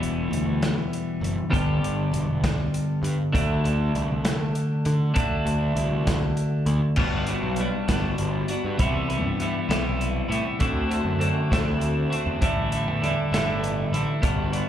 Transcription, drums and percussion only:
0.03 closed hi-hat
0.33 closed hi-hat
0.62 snare, closed hi-hat
0.93 closed hi-hat
1.24 closed hi-hat
1.53 kick, closed hi-hat
1.84 closed hi-hat
2.14 closed hi-hat
2.44 kick, snare, closed hi-hat
2.74 closed hi-hat
3.04 closed hi-hat
3.35 kick, closed hi-hat
3.65 closed hi-hat
3.95 closed hi-hat
4.25 snare, closed hi-hat
4.55 closed hi-hat
4.85 closed hi-hat
5.16 kick, closed hi-hat
5.47 closed hi-hat
5.77 closed hi-hat
6.07 kick, snare, closed hi-hat
6.37 closed hi-hat
6.66 closed hi-hat
6.96 kick, crash
7.27 closed hi-hat
7.56 closed hi-hat
7.88 kick, snare, closed hi-hat
8.18 closed hi-hat
8.48 closed hi-hat
8.79 kick, closed hi-hat
9.10 closed hi-hat
9.40 closed hi-hat
9.71 snare, closed hi-hat
10.01 closed hi-hat
10.32 closed hi-hat
10.60 kick, closed hi-hat
10.91 closed hi-hat
11.21 closed hi-hat
11.52 kick, snare, closed hi-hat
11.81 closed hi-hat
12.13 closed hi-hat
12.42 kick, closed hi-hat
12.72 closed hi-hat
13.04 closed hi-hat
13.34 snare, closed hi-hat
13.64 closed hi-hat
13.94 closed hi-hat
14.23 kick, closed hi-hat
14.53 closed hi-hat

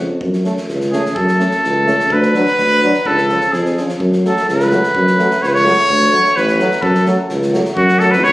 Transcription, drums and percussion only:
0.21 kick
0.33 snare
0.45 snare
0.57 snare
0.69 snare
0.81 snare
0.93 snare
1.06 snare
1.16 kick
1.28 snare
1.40 snare
1.51 snare
1.64 snare
1.87 snare
2.00 snare
2.10 kick
2.23 snare
2.34 snare
2.46 snare
2.58 snare
2.70 snare
2.82 snare
2.94 snare
3.05 kick
3.18 snare
3.29 snare
3.41 snare
3.53 snare
3.65 snare
3.77 snare
3.89 snare
4.00 kick
4.13 snare
4.25 snare
4.37 snare
4.49 snare
4.60 snare
4.71 snare
4.83 snare
4.95 kick
5.07 snare
5.19 snare
5.31 snare
5.43 snare
5.55 snare
5.67 snare
5.78 snare
5.89 kick
6.02 snare
6.13 snare
6.25 snare
6.36 snare
6.47 snare
6.59 snare
6.71 snare
6.83 kick
6.95 snare
7.06 snare
7.29 snare
7.42 snare
7.54 snare
7.65 snare
7.77 kick
7.88 snare
8.00 snare
8.13 snare
8.24 snare

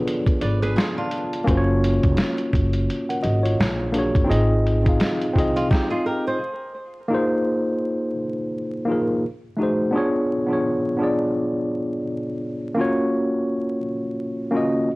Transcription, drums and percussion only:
0.08 closed hi-hat
0.27 kick, closed hi-hat
0.41 closed hi-hat
0.63 closed hi-hat
0.78 snare, closed hi-hat
1.11 closed hi-hat
1.33 closed hi-hat
1.47 kick, closed hi-hat
1.84 closed hi-hat
2.03 kick, closed hi-hat
2.17 snare, closed hi-hat
2.38 closed hi-hat
2.53 kick, closed hi-hat
2.73 closed hi-hat
2.90 closed hi-hat
3.10 closed hi-hat
3.24 closed hi-hat
3.46 closed hi-hat
3.61 snare, closed hi-hat
3.94 closed hi-hat
4.15 kick, closed hi-hat
4.31 closed hi-hat
4.67 closed hi-hat
4.86 kick, closed hi-hat
5.00 snare, closed hi-hat
5.22 closed hi-hat
5.36 kick, closed hi-hat
5.57 closed hi-hat
5.71 kick, snare

